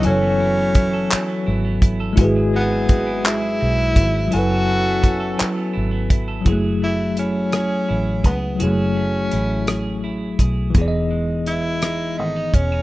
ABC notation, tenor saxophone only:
X:1
M:6/8
L:1/8
Q:3/8=56
K:F#dor
V:1 name="Tenor saxophone"
C4- C z | z B,2 E3 | F4 z2 | z E C3 B, |
C4- C z | z2 E2 D C |]